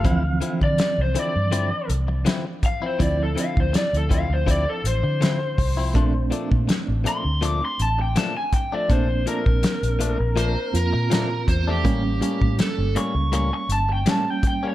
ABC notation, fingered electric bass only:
X:1
M:4/4
L:1/16
Q:"Swing 16ths" 1/4=81
K:Dm
V:1 name="Fingered electric bass" clef=bass
D,,2 z D, z C,, z G,,2 z C,,2 z4 | D,,2 z D,, z D,,2 D,,2 z A,,, D,3 C,,2 | B,,,2 z B,, z A,,, z D,,2 z A,,,2 z4 | B,,,2 z B,,, z B,,,2 B,,,2 z F,, B,,3 E,,2 |
A,,,2 z A,, z G,,, z ^C,,2 z G,,,2 z4 |]